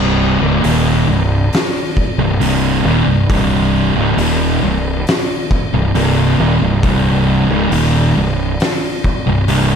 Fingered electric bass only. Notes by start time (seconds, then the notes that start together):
Already playing: C1
0.42 C#1
0.64 D#1
1.08 C1
2.18 C1
2.40 C1
2.84 D#1
3.06 C1
3.29 C1
3.96 C#1
4.17 D#1
4.62 C1
5.73 C1
5.95 C1
6.39 D#1
6.62 C1
6.83 C1
7.50 C#1
7.72 D#1
8.17 C1
9.27 C1
9.48 C1